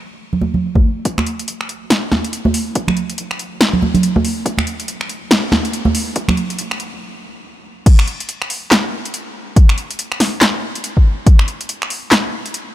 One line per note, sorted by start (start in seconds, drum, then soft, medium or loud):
0.33 low conga medium
0.41 high conga medium
0.54 low conga medium
0.75 kick medium
0.75 high conga medium
1.05 kick loud
1.05 closed hi-hat medium
1.18 finger snap medium
1.18 high conga medium
1.27 closed hi-hat soft
1.39 closed hi-hat medium
1.48 closed hi-hat medium
1.61 finger snap soft
1.69 closed hi-hat medium
1.90 snare loud
1.90 closed hi-hat medium
2.12 snare medium
2.12 high conga medium
2.24 closed hi-hat medium
2.33 closed hi-hat medium
2.45 high conga loud
2.54 open hi-hat medium
2.75 kick loud
2.75 closed hi-hat medium
2.88 finger snap medium
2.88 high conga medium
2.88 low conga medium
2.97 closed hi-hat soft
3.10 closed hi-hat medium
3.18 closed hi-hat medium
3.31 finger snap medium
3.39 closed hi-hat medium
3.61 snare loud
3.61 closed hi-hat medium
3.73 low conga medium
3.82 high conga medium
3.94 closed hi-hat medium
3.94 low conga medium
4.03 closed hi-hat medium
4.16 kick medium
4.16 high conga loud
4.25 open hi-hat medium
4.46 kick loud
4.46 closed hi-hat medium
4.58 finger snap medium
4.58 high conga medium
4.67 closed hi-hat soft
4.80 closed hi-hat medium
4.88 closed hi-hat medium
5.01 finger snap medium
5.09 closed hi-hat soft
5.31 snare loud
5.31 closed hi-hat medium
5.52 snare medium
5.52 high conga medium
5.65 closed hi-hat soft
5.73 closed hi-hat medium
5.85 high conga loud
5.95 open hi-hat medium
6.16 kick loud
6.16 closed hi-hat medium
6.28 finger snap medium
6.28 high conga medium
6.28 low conga medium
6.37 closed hi-hat soft
6.50 closed hi-hat medium
6.59 closed hi-hat medium
6.71 finger snap medium
6.80 closed hi-hat soft
7.86 kick loud
7.86 closed hi-hat medium
7.86 crash loud
7.99 finger snap medium
8.08 closed hi-hat medium
8.20 closed hi-hat medium
8.29 closed hi-hat medium
8.42 finger snap medium
8.50 open hi-hat medium
8.71 snare loud
8.71 clap loud
8.71 closed hi-hat medium
9.05 closed hi-hat medium
9.14 closed hi-hat medium
9.56 kick loud
9.56 closed hi-hat medium
9.69 finger snap medium
9.78 closed hi-hat medium
9.91 closed hi-hat medium
9.99 closed hi-hat medium
10.12 finger snap medium
10.20 snare medium
10.20 open hi-hat medium
10.41 snare loud
10.41 clap medium
10.41 closed hi-hat medium
10.75 closed hi-hat medium
10.84 closed hi-hat medium
10.97 kick medium
11.27 kick loud
11.27 closed hi-hat medium
11.39 finger snap medium
11.48 closed hi-hat soft
11.61 closed hi-hat medium
11.69 closed hi-hat medium
11.82 finger snap medium
11.90 open hi-hat medium
12.12 snare loud
12.12 clap medium
12.12 closed hi-hat medium
12.46 closed hi-hat medium
12.54 closed hi-hat medium